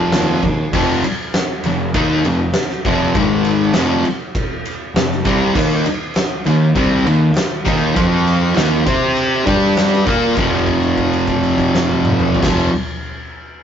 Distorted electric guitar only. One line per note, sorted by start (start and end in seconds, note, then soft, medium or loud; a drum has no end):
0.00 0.44 F2 medium
0.00 0.43 C3 medium
0.00 0.41 F3 medium
0.73 1.03 F2 loud
0.73 1.03 C3 loud
0.73 1.04 F3 loud
1.05 muted distorted electric guitar stroke medium
1.66 1.89 F2 medium
1.66 1.89 C3 medium
1.95 2.23 D#3 medium
1.95 2.24 A#3 loud
1.95 2.25 D#4 loud
2.26 2.49 F2 medium
2.26 2.49 C3 medium
2.85 3.14 F2 medium
2.85 3.14 C3 loud
2.85 3.15 F3 loud
3.15 3.74 G#2 loud
3.15 3.74 D#3 loud
3.15 3.75 G#3 loud
3.75 4.04 F2 medium
3.75 4.04 C3 medium
3.75 4.05 F3 loud
4.96 5.20 F2 medium
4.96 5.20 C3 medium
5.25 5.54 C3 loud
5.25 5.55 G3 loud
5.25 5.55 C4 loud
5.56 5.85 D#3 loud
5.56 5.85 A#3 loud
5.56 5.86 D#4 loud
5.86 muted distorted electric guitar stroke medium
6.46 6.70 D#3 medium
6.46 6.70 A#3 medium
6.75 7.04 C3 medium
6.75 7.05 G3 loud
6.75 7.05 C4 loud
7.06 7.30 D#3 medium
7.06 7.30 A#3 medium
7.65 7.94 D#3 loud
7.65 7.95 A#3 loud
7.65 7.95 D#4 loud
7.94 8.54 F3 loud
7.94 8.55 C4 loud
7.94 8.55 F4 loud
8.55 8.85 D#3 medium
8.55 8.85 A#3 medium
8.55 8.86 D#4 loud
8.86 9.45 C4 loud
8.86 9.46 G4 loud
8.86 9.46 C5 loud
9.46 10.05 G3 loud
9.46 10.06 D4 medium
9.46 10.07 G4 loud
10.06 10.35 A#3 medium
10.06 10.36 F4 loud
10.06 10.37 A#4 loud
10.35 12.40 F2 loud
10.35 12.43 C3 loud
10.40 12.44 F3 loud
12.41 12.68 F2 loud
12.41 12.70 C3 loud
12.41 12.70 F3 loud